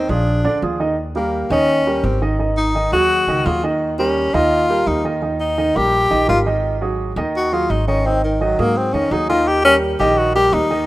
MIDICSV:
0, 0, Header, 1, 4, 480
1, 0, Start_track
1, 0, Tempo, 353982
1, 1329, Time_signature, 4, 2, 24, 8
1, 14732, End_track
2, 0, Start_track
2, 0, Title_t, "Grand piano"
2, 0, Program_c, 0, 0
2, 124, Note_on_c, 0, 53, 64
2, 128, Note_on_c, 0, 65, 63
2, 132, Note_on_c, 0, 68, 65
2, 519, Note_off_c, 0, 53, 0
2, 522, Note_off_c, 0, 65, 0
2, 524, Note_off_c, 0, 68, 0
2, 602, Note_on_c, 0, 50, 77
2, 605, Note_on_c, 0, 62, 76
2, 611, Note_on_c, 0, 74, 77
2, 801, Note_off_c, 0, 50, 0
2, 803, Note_off_c, 0, 62, 0
2, 807, Note_off_c, 0, 74, 0
2, 845, Note_on_c, 0, 53, 60
2, 848, Note_on_c, 0, 65, 63
2, 853, Note_on_c, 0, 68, 68
2, 1043, Note_off_c, 0, 53, 0
2, 1045, Note_off_c, 0, 65, 0
2, 1048, Note_off_c, 0, 68, 0
2, 1082, Note_on_c, 0, 51, 75
2, 1086, Note_on_c, 0, 63, 82
2, 1092, Note_on_c, 0, 75, 75
2, 1282, Note_off_c, 0, 51, 0
2, 1284, Note_off_c, 0, 63, 0
2, 1288, Note_off_c, 0, 75, 0
2, 1565, Note_on_c, 0, 55, 70
2, 1568, Note_on_c, 0, 67, 66
2, 1572, Note_on_c, 0, 70, 73
2, 1961, Note_off_c, 0, 55, 0
2, 1962, Note_off_c, 0, 67, 0
2, 1965, Note_off_c, 0, 70, 0
2, 2047, Note_on_c, 0, 51, 85
2, 2051, Note_on_c, 0, 63, 83
2, 2055, Note_on_c, 0, 75, 79
2, 2442, Note_off_c, 0, 51, 0
2, 2444, Note_off_c, 0, 63, 0
2, 2446, Note_off_c, 0, 75, 0
2, 2532, Note_on_c, 0, 55, 63
2, 2535, Note_on_c, 0, 67, 66
2, 2540, Note_on_c, 0, 70, 68
2, 2925, Note_off_c, 0, 55, 0
2, 2926, Note_off_c, 0, 67, 0
2, 2929, Note_off_c, 0, 70, 0
2, 3006, Note_on_c, 0, 51, 75
2, 3010, Note_on_c, 0, 63, 79
2, 3014, Note_on_c, 0, 75, 83
2, 3205, Note_off_c, 0, 51, 0
2, 3206, Note_off_c, 0, 63, 0
2, 3209, Note_off_c, 0, 75, 0
2, 3244, Note_on_c, 0, 51, 62
2, 3247, Note_on_c, 0, 63, 60
2, 3252, Note_on_c, 0, 75, 67
2, 3640, Note_off_c, 0, 51, 0
2, 3642, Note_off_c, 0, 63, 0
2, 3644, Note_off_c, 0, 75, 0
2, 3729, Note_on_c, 0, 51, 70
2, 3736, Note_on_c, 0, 63, 69
2, 3738, Note_on_c, 0, 75, 68
2, 3926, Note_off_c, 0, 51, 0
2, 3930, Note_off_c, 0, 63, 0
2, 3932, Note_off_c, 0, 75, 0
2, 3970, Note_on_c, 0, 54, 74
2, 3975, Note_on_c, 0, 66, 75
2, 3979, Note_on_c, 0, 68, 70
2, 4363, Note_off_c, 0, 54, 0
2, 4366, Note_off_c, 0, 66, 0
2, 4369, Note_off_c, 0, 68, 0
2, 4451, Note_on_c, 0, 51, 80
2, 4455, Note_on_c, 0, 63, 78
2, 4462, Note_on_c, 0, 75, 77
2, 4647, Note_off_c, 0, 51, 0
2, 4650, Note_off_c, 0, 63, 0
2, 4654, Note_off_c, 0, 75, 0
2, 4694, Note_on_c, 0, 54, 66
2, 4698, Note_on_c, 0, 66, 68
2, 4703, Note_on_c, 0, 68, 61
2, 4889, Note_off_c, 0, 54, 0
2, 4891, Note_off_c, 0, 66, 0
2, 4894, Note_off_c, 0, 68, 0
2, 4931, Note_on_c, 0, 51, 77
2, 4934, Note_on_c, 0, 63, 74
2, 4938, Note_on_c, 0, 75, 83
2, 5324, Note_off_c, 0, 51, 0
2, 5326, Note_off_c, 0, 63, 0
2, 5328, Note_off_c, 0, 75, 0
2, 5410, Note_on_c, 0, 55, 73
2, 5413, Note_on_c, 0, 67, 69
2, 5419, Note_on_c, 0, 70, 77
2, 5804, Note_off_c, 0, 55, 0
2, 5805, Note_off_c, 0, 67, 0
2, 5809, Note_off_c, 0, 70, 0
2, 5886, Note_on_c, 0, 51, 84
2, 5893, Note_on_c, 0, 63, 80
2, 5894, Note_on_c, 0, 75, 88
2, 6281, Note_off_c, 0, 51, 0
2, 6285, Note_off_c, 0, 63, 0
2, 6286, Note_off_c, 0, 75, 0
2, 6367, Note_on_c, 0, 55, 64
2, 6372, Note_on_c, 0, 67, 65
2, 6376, Note_on_c, 0, 70, 72
2, 6762, Note_off_c, 0, 55, 0
2, 6765, Note_off_c, 0, 67, 0
2, 6767, Note_off_c, 0, 70, 0
2, 6843, Note_on_c, 0, 51, 81
2, 6848, Note_on_c, 0, 63, 76
2, 6853, Note_on_c, 0, 75, 81
2, 7043, Note_off_c, 0, 51, 0
2, 7046, Note_off_c, 0, 63, 0
2, 7048, Note_off_c, 0, 75, 0
2, 7080, Note_on_c, 0, 51, 67
2, 7087, Note_on_c, 0, 63, 65
2, 7092, Note_on_c, 0, 75, 62
2, 7477, Note_off_c, 0, 51, 0
2, 7481, Note_off_c, 0, 63, 0
2, 7485, Note_off_c, 0, 75, 0
2, 7565, Note_on_c, 0, 51, 76
2, 7568, Note_on_c, 0, 63, 74
2, 7571, Note_on_c, 0, 75, 75
2, 7764, Note_off_c, 0, 51, 0
2, 7765, Note_off_c, 0, 63, 0
2, 7767, Note_off_c, 0, 75, 0
2, 7803, Note_on_c, 0, 55, 75
2, 7810, Note_on_c, 0, 67, 75
2, 7813, Note_on_c, 0, 70, 74
2, 8199, Note_off_c, 0, 55, 0
2, 8203, Note_off_c, 0, 67, 0
2, 8205, Note_off_c, 0, 70, 0
2, 8278, Note_on_c, 0, 51, 80
2, 8282, Note_on_c, 0, 63, 72
2, 8284, Note_on_c, 0, 75, 76
2, 8479, Note_off_c, 0, 51, 0
2, 8482, Note_off_c, 0, 63, 0
2, 8483, Note_off_c, 0, 75, 0
2, 8514, Note_on_c, 0, 55, 63
2, 8516, Note_on_c, 0, 67, 64
2, 8521, Note_on_c, 0, 70, 67
2, 8717, Note_off_c, 0, 55, 0
2, 8718, Note_off_c, 0, 67, 0
2, 8721, Note_off_c, 0, 70, 0
2, 8766, Note_on_c, 0, 51, 75
2, 8766, Note_on_c, 0, 63, 80
2, 8772, Note_on_c, 0, 75, 73
2, 9161, Note_off_c, 0, 51, 0
2, 9161, Note_off_c, 0, 63, 0
2, 9164, Note_off_c, 0, 75, 0
2, 9237, Note_on_c, 0, 54, 65
2, 9243, Note_on_c, 0, 66, 70
2, 9248, Note_on_c, 0, 68, 69
2, 9636, Note_off_c, 0, 54, 0
2, 9639, Note_off_c, 0, 66, 0
2, 9642, Note_off_c, 0, 68, 0
2, 9728, Note_on_c, 0, 51, 83
2, 9729, Note_on_c, 0, 63, 86
2, 9734, Note_on_c, 0, 75, 90
2, 10123, Note_off_c, 0, 51, 0
2, 10123, Note_off_c, 0, 63, 0
2, 10126, Note_off_c, 0, 75, 0
2, 10200, Note_on_c, 0, 54, 69
2, 10205, Note_on_c, 0, 66, 72
2, 10209, Note_on_c, 0, 68, 66
2, 10598, Note_off_c, 0, 54, 0
2, 10600, Note_off_c, 0, 66, 0
2, 10603, Note_off_c, 0, 68, 0
2, 10685, Note_on_c, 0, 51, 75
2, 10690, Note_on_c, 0, 63, 75
2, 10692, Note_on_c, 0, 75, 79
2, 10884, Note_off_c, 0, 51, 0
2, 10887, Note_off_c, 0, 63, 0
2, 10888, Note_off_c, 0, 75, 0
2, 10926, Note_on_c, 0, 51, 63
2, 10933, Note_on_c, 0, 63, 65
2, 10939, Note_on_c, 0, 75, 61
2, 11321, Note_off_c, 0, 51, 0
2, 11325, Note_off_c, 0, 63, 0
2, 11329, Note_off_c, 0, 75, 0
2, 11402, Note_on_c, 0, 51, 73
2, 11407, Note_on_c, 0, 63, 73
2, 11412, Note_on_c, 0, 75, 73
2, 11602, Note_off_c, 0, 51, 0
2, 11605, Note_off_c, 0, 63, 0
2, 11608, Note_off_c, 0, 75, 0
2, 11646, Note_on_c, 0, 54, 71
2, 11649, Note_on_c, 0, 66, 67
2, 11652, Note_on_c, 0, 68, 76
2, 12041, Note_off_c, 0, 54, 0
2, 12043, Note_off_c, 0, 66, 0
2, 12045, Note_off_c, 0, 68, 0
2, 12124, Note_on_c, 0, 51, 76
2, 12127, Note_on_c, 0, 63, 81
2, 12133, Note_on_c, 0, 75, 76
2, 12323, Note_off_c, 0, 51, 0
2, 12325, Note_off_c, 0, 63, 0
2, 12329, Note_off_c, 0, 75, 0
2, 12367, Note_on_c, 0, 54, 68
2, 12374, Note_on_c, 0, 66, 69
2, 12377, Note_on_c, 0, 68, 72
2, 12565, Note_off_c, 0, 54, 0
2, 12569, Note_off_c, 0, 66, 0
2, 12571, Note_off_c, 0, 68, 0
2, 12605, Note_on_c, 0, 51, 89
2, 12611, Note_on_c, 0, 63, 74
2, 12611, Note_on_c, 0, 75, 86
2, 13000, Note_off_c, 0, 51, 0
2, 13004, Note_off_c, 0, 63, 0
2, 13004, Note_off_c, 0, 75, 0
2, 13082, Note_on_c, 0, 55, 71
2, 13087, Note_on_c, 0, 67, 75
2, 13091, Note_on_c, 0, 70, 80
2, 13479, Note_off_c, 0, 55, 0
2, 13482, Note_off_c, 0, 67, 0
2, 13484, Note_off_c, 0, 70, 0
2, 13564, Note_on_c, 0, 51, 88
2, 13568, Note_on_c, 0, 63, 88
2, 13572, Note_on_c, 0, 75, 90
2, 13960, Note_off_c, 0, 51, 0
2, 13962, Note_off_c, 0, 63, 0
2, 13965, Note_off_c, 0, 75, 0
2, 14038, Note_on_c, 0, 55, 70
2, 14040, Note_on_c, 0, 67, 68
2, 14044, Note_on_c, 0, 70, 74
2, 14436, Note_off_c, 0, 55, 0
2, 14437, Note_off_c, 0, 67, 0
2, 14440, Note_off_c, 0, 70, 0
2, 14516, Note_on_c, 0, 51, 86
2, 14521, Note_on_c, 0, 63, 80
2, 14524, Note_on_c, 0, 75, 86
2, 14718, Note_off_c, 0, 51, 0
2, 14721, Note_off_c, 0, 63, 0
2, 14723, Note_off_c, 0, 75, 0
2, 14732, End_track
3, 0, Start_track
3, 0, Title_t, "Tenor saxophone"
3, 0, Program_c, 1, 66
3, 0, Note_on_c, 1, 60, 79
3, 127, Note_on_c, 1, 62, 77
3, 148, Note_off_c, 1, 60, 0
3, 848, Note_off_c, 1, 62, 0
3, 1572, Note_on_c, 1, 58, 71
3, 2017, Note_off_c, 1, 58, 0
3, 2055, Note_on_c, 1, 61, 92
3, 2774, Note_on_c, 1, 60, 70
3, 2794, Note_off_c, 1, 61, 0
3, 3012, Note_off_c, 1, 60, 0
3, 3487, Note_on_c, 1, 63, 82
3, 3935, Note_off_c, 1, 63, 0
3, 3969, Note_on_c, 1, 66, 94
3, 4688, Note_on_c, 1, 65, 79
3, 4709, Note_off_c, 1, 66, 0
3, 4929, Note_off_c, 1, 65, 0
3, 5407, Note_on_c, 1, 61, 79
3, 5889, Note_on_c, 1, 65, 101
3, 5909, Note_off_c, 1, 61, 0
3, 6601, Note_on_c, 1, 63, 81
3, 6621, Note_off_c, 1, 65, 0
3, 6845, Note_off_c, 1, 63, 0
3, 7325, Note_on_c, 1, 63, 84
3, 7812, Note_on_c, 1, 67, 102
3, 7832, Note_off_c, 1, 63, 0
3, 8519, Note_off_c, 1, 67, 0
3, 8527, Note_on_c, 1, 65, 77
3, 8672, Note_off_c, 1, 65, 0
3, 9984, Note_on_c, 1, 66, 76
3, 10209, Note_on_c, 1, 65, 85
3, 10229, Note_off_c, 1, 66, 0
3, 10444, Note_on_c, 1, 63, 70
3, 10464, Note_off_c, 1, 65, 0
3, 10675, Note_off_c, 1, 63, 0
3, 10683, Note_on_c, 1, 61, 76
3, 10933, Note_on_c, 1, 60, 79
3, 10953, Note_off_c, 1, 61, 0
3, 11162, Note_off_c, 1, 60, 0
3, 11170, Note_on_c, 1, 51, 63
3, 11421, Note_on_c, 1, 54, 75
3, 11441, Note_off_c, 1, 51, 0
3, 11655, Note_on_c, 1, 58, 87
3, 11675, Note_off_c, 1, 54, 0
3, 11889, Note_on_c, 1, 60, 72
3, 11910, Note_off_c, 1, 58, 0
3, 12115, Note_on_c, 1, 61, 82
3, 12135, Note_off_c, 1, 60, 0
3, 12367, Note_on_c, 1, 63, 72
3, 12387, Note_off_c, 1, 61, 0
3, 12596, Note_off_c, 1, 63, 0
3, 12604, Note_on_c, 1, 65, 90
3, 12845, Note_on_c, 1, 67, 84
3, 12865, Note_off_c, 1, 65, 0
3, 13076, Note_off_c, 1, 67, 0
3, 13084, Note_on_c, 1, 61, 94
3, 13230, Note_off_c, 1, 61, 0
3, 13554, Note_on_c, 1, 67, 94
3, 13803, Note_on_c, 1, 66, 81
3, 13823, Note_off_c, 1, 67, 0
3, 14033, Note_off_c, 1, 66, 0
3, 14041, Note_on_c, 1, 67, 98
3, 14281, Note_on_c, 1, 63, 86
3, 14301, Note_off_c, 1, 67, 0
3, 14732, Note_off_c, 1, 63, 0
3, 14732, End_track
4, 0, Start_track
4, 0, Title_t, "Upright bass"
4, 0, Program_c, 2, 32
4, 125, Note_on_c, 2, 34, 90
4, 573, Note_off_c, 2, 34, 0
4, 604, Note_on_c, 2, 38, 73
4, 830, Note_off_c, 2, 38, 0
4, 844, Note_on_c, 2, 39, 90
4, 1969, Note_off_c, 2, 39, 0
4, 2038, Note_on_c, 2, 39, 96
4, 2713, Note_off_c, 2, 39, 0
4, 2761, Note_on_c, 2, 32, 91
4, 3887, Note_off_c, 2, 32, 0
4, 3958, Note_on_c, 2, 39, 92
4, 4410, Note_off_c, 2, 39, 0
4, 4440, Note_on_c, 2, 37, 67
4, 4668, Note_off_c, 2, 37, 0
4, 4686, Note_on_c, 2, 39, 97
4, 5809, Note_off_c, 2, 39, 0
4, 5886, Note_on_c, 2, 39, 92
4, 6557, Note_off_c, 2, 39, 0
4, 6600, Note_on_c, 2, 39, 96
4, 7726, Note_off_c, 2, 39, 0
4, 7810, Note_on_c, 2, 34, 92
4, 8256, Note_off_c, 2, 34, 0
4, 8288, Note_on_c, 2, 34, 72
4, 8512, Note_off_c, 2, 34, 0
4, 8527, Note_on_c, 2, 32, 97
4, 9650, Note_off_c, 2, 32, 0
4, 9712, Note_on_c, 2, 39, 91
4, 10390, Note_off_c, 2, 39, 0
4, 10440, Note_on_c, 2, 32, 93
4, 11567, Note_off_c, 2, 32, 0
4, 11646, Note_on_c, 2, 44, 91
4, 12094, Note_off_c, 2, 44, 0
4, 12120, Note_on_c, 2, 41, 75
4, 12347, Note_off_c, 2, 41, 0
4, 12356, Note_on_c, 2, 39, 97
4, 13484, Note_off_c, 2, 39, 0
4, 13553, Note_on_c, 2, 34, 91
4, 14230, Note_off_c, 2, 34, 0
4, 14274, Note_on_c, 2, 39, 100
4, 14732, Note_off_c, 2, 39, 0
4, 14732, End_track
0, 0, End_of_file